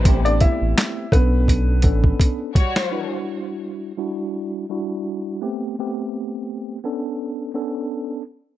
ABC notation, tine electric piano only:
X:1
M:4/4
L:1/8
Q:"Swing 16ths" 1/4=84
K:Em
V:1 name="Tine electric piano"
[A,B,CG]3 [B,^CDA]2 [B,CDA]2 z | [G,DEF]3 [G,DEF]2 [G,DEF]2 [A,B,CG] | [A,B,CG]3 [B,^CDA]2 [B,CDA]2 z |]